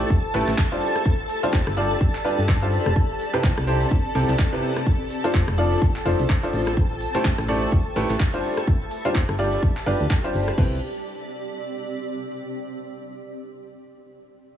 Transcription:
Already playing: A3 E4 G4 A4 D5 E5 A5 B5
0.00 closed hi-hat
0.10 E1, kick, closed hi-hat
0.34 A1 A3 E4 G4 A4 B4, open hi-hat
0.48 A1, clap, closed hi-hat
0.58 kick, clap, closed hi-hat
0.72 G3 D4 F4 G4 C5
0.82 G4, open hi-hat
0.94 D5, cross-stick, closed hi-hat
1.06 kick, closed hi-hat
1.25 A5
1.29 open hi-hat
1.43 G3 D4 F4 G4 C5, closed hi-hat
1.53 G1, kick, clap, closed hi-hat
1.67 G1, cross-stick
1.77 G3 D4 F4 G4 D5, open hi-hat
1.91 closed hi-hat
2.01 kick, closed hi-hat
2.15 clap
2.24 G3 D4 F4 G4 B4, open hi-hat
2.38 G2, closed hi-hat
2.48 kick, clap, closed hi-hat
2.62 G3 D4 F4 G4 C5
2.72 open hi-hat
2.86 F1, cross-stick, closed hi-hat
2.96 C4, kick, closed hi-hat
3.20 open hi-hat
3.33 C3 C4 E4 G4 B4, closed hi-hat
3.44 C2, kick, clap, closed hi-hat
3.57 C2, cross-stick
3.67 C3 C4 E4 G4 C5, open hi-hat
3.81 closed hi-hat
3.91 G1, kick, closed hi-hat
4.15 C2 C3 C4 E4 G4 A4, open hi-hat
4.29 C2, clap, closed hi-hat
4.39 kick, clap, closed hi-hat
4.53 C3 C4 E4 G4 B4
4.63 open hi-hat
4.76 cross-stick, closed hi-hat
4.86 F4, kick, closed hi-hat
5.03 G5
5.10 open hi-hat
5.24 F3 D4 F4 A4 C5, closed hi-hat
5.30 C5
5.34 F1, kick, clap, closed hi-hat
5.48 F1, cross-stick
5.58 F3 D4 F4 A4 D5, open hi-hat
5.72 closed hi-hat
5.82 kick, closed hi-hat
5.96 clap
6.05 F1 F3 D4 F4 A4 C5, open hi-hat
6.19 C2, closed hi-hat
6.29 kick, clap, closed hi-hat
6.43 F3 D4 F4 A4 C5
6.53 A1, open hi-hat
6.67 cross-stick, closed hi-hat
6.77 A4, kick, closed hi-hat
6.96 E5
7.01 open hi-hat
7.15 A3 E4 G4 A4 C5, closed hi-hat
7.25 A1, kick, clap, closed hi-hat
7.38 A1, cross-stick
7.48 A3 E4 G4 A4 D5, open hi-hat
7.62 closed hi-hat
7.72 E1, kick, closed hi-hat
7.96 A1 A3 E4 G4 A4 B4, open hi-hat
8.10 A1, clap, closed hi-hat
8.20 kick, clap, closed hi-hat
8.34 G3 D4 F4 G4 C5
8.44 G4, open hi-hat
8.57 cross-stick, closed hi-hat
8.67 kick, closed hi-hat
8.86 D5 A5
8.91 open hi-hat
9.05 G3 D4 F4 G4 C5, closed hi-hat
9.15 G1, kick, clap, closed hi-hat
9.29 G1, cross-stick
9.39 G3 D4 F4 G4 D5, open hi-hat
9.53 closed hi-hat
9.63 kick, closed hi-hat
9.77 clap
9.86 G1 G3 D4 F4 G4 B4, open hi-hat
10.00 D2, closed hi-hat
10.10 kick, clap, closed hi-hat
10.24 G3 D4 F4 G4 C5
10.34 G1, open hi-hat
10.48 cross-stick, closed hi-hat
10.58 C2 C4 E4 G4 B4, kick, crash
10.66 G4
10.73 D5

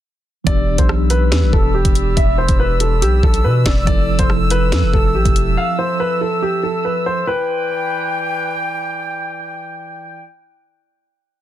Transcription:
0.44 E1 E3 B3 D4 G4 D5 B5 E6, kick, closed hi-hat
0.49 G4
0.78 B1 C5, kick, closed hi-hat
0.89 cross-stick
1.10 B4, closed hi-hat
1.32 E2, snare, closed hi-hat
1.42 B1
1.53 E1 A4, kick
1.74 G4
1.85 E1, kick, closed hi-hat
1.95 closed hi-hat
2.17 E1 E5, kick, closed hi-hat
2.38 C5
2.48 E1, kick, closed hi-hat
2.59 B4
2.80 A4, closed hi-hat
3.02 B1 G4, closed hi-hat
3.23 B1 A4, kick
3.34 closed hi-hat
3.44 B2 B4
3.66 E1 D5, kick, snare, closed hi-hat
3.85 F1 F3 C4 E4 A4 D5 E5 A5, kick, closed hi-hat
3.89 A4
4.19 F1 C5, kick, closed hi-hat
4.30 cross-stick
4.50 B4, closed hi-hat
4.72 F2, snare, closed hi-hat
4.83 F1
4.93 F1 A4, kick
5.15 A1 G4
5.25 F1, kick, closed hi-hat
5.36 closed hi-hat
5.47 E1
5.57 F5
5.79 C5
6.00 B4
6.21 A4
6.42 G4
6.63 A4
6.85 B4
7.06 C5
7.27 E3 E4 B4 D5 G5

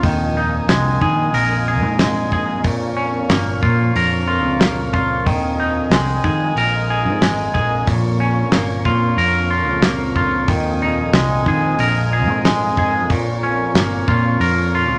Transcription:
Already playing: A#1 F2 A#3 A#4
0.03 D#2 D#3 D#5 G#5 D#6, kick, open hi-hat
0.37 D#4
0.68 C2 G#3, snare, open hi-hat
1.01 D#3 G#4, kick
1.33 A#1 A#4, open hi-hat
1.68 G#4
1.82 G#2
1.99 G#3, snare, open hi-hat
2.32 G#4, kick
2.64 A#1 A#2 C#5 F5 C#6, kick, open hi-hat
2.97 C#4
3.29 G1 A#3, snare, open hi-hat
3.63 A#2 F4, kick
3.95 F2 A#4, open hi-hat
4.28 F4
4.43 C#2
4.60 A#3, snare, open hi-hat
4.93 F4, kick
5.26 D#2 D#3 D#5 G#5 D#6, kick, open hi-hat
5.60 D#4
5.90 C2 G#3, snare, open hi-hat
6.24 D#3 G#4, kick
6.55 A#1 A#4, open hi-hat
6.90 G#4
7.05 G#2
7.22 G#1 G#3, snare, open hi-hat
7.54 A#1 G#4, kick
7.87 A#1 F2 A#2 C#5 F5 C#6, kick, open hi-hat
8.20 C#4
8.52 G1 A#3, snare, open hi-hat
8.85 A#2 F4, kick
9.17 F2 A#4, open hi-hat
9.51 F4
9.66 C#2
9.82 A#3, snare, open hi-hat
10.16 F4, kick
10.48 D#2 D#3 A#4 D#5 G#5 D#6, kick, open hi-hat
10.82 D#4
11.13 C2 G#3, snare, open hi-hat
11.46 D#3 G#4, kick
11.79 A#1 A#4, open hi-hat
12.13 G#4
12.27 G#2
12.45 G#3, snare, open hi-hat
12.77 G#4, kick
13.10 A#1 A#2 C#5 F5 C#6, kick, open hi-hat
13.43 C#4
13.74 G1 A#3, snare, open hi-hat
14.08 A#2 F4, kick
14.40 F2 A#4, open hi-hat
14.75 F4
14.89 C#2

